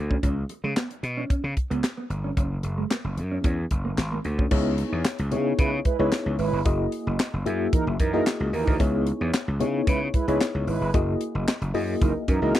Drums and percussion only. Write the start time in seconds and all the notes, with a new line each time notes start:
0.11 kick
0.23 kick, closed hi-hat
0.49 closed hi-hat
0.77 snare, clap, closed hi-hat
0.91 closed hi-hat
1.04 closed hi-hat
1.30 kick, closed hi-hat
1.57 kick, closed hi-hat
1.71 closed hi-hat
1.84 snare, clap, closed hi-hat
2.10 closed hi-hat
2.37 kick, closed hi-hat
2.63 closed hi-hat
2.91 snare, clap, closed hi-hat
3.17 closed hi-hat
3.44 kick, closed hi-hat
3.71 kick, closed hi-hat
3.98 snare, clap, closed hi-hat
4.24 closed hi-hat
4.39 kick
4.51 kick, crash
4.78 closed hi-hat
5.05 snare, clap, closed hi-hat
5.19 closed hi-hat
5.32 closed hi-hat
5.59 kick, closed hi-hat
5.85 kick, closed hi-hat
6.12 snare, clap, closed hi-hat
6.39 open hi-hat
6.66 kick, closed hi-hat
6.92 closed hi-hat
7.19 snare, clap, closed hi-hat
7.46 closed hi-hat
7.73 kick, closed hi-hat
8.00 kick, closed hi-hat
8.27 snare, clap, closed hi-hat
8.54 open hi-hat
8.68 kick
8.80 kick, closed hi-hat
9.07 closed hi-hat
9.34 snare, clap, closed hi-hat
9.61 closed hi-hat
9.87 kick, closed hi-hat
10.14 kick, closed hi-hat
10.28 closed hi-hat
10.41 snare, clap, closed hi-hat
10.68 open hi-hat
10.94 kick, closed hi-hat
11.21 closed hi-hat
11.48 snare, clap, closed hi-hat
11.62 closed hi-hat
11.75 open hi-hat
12.02 kick, closed hi-hat
12.28 kick, closed hi-hat
12.55 snare, clap, closed hi-hat